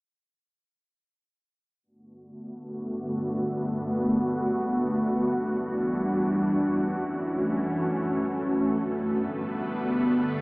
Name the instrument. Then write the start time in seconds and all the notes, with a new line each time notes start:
ambient pad
1.83 G2 D3 A3 B3 F#4
5.03 E2 E3 G3 D4
6.63 F#2 E3 A3 C#4
8.23 G2 D3 A3 B3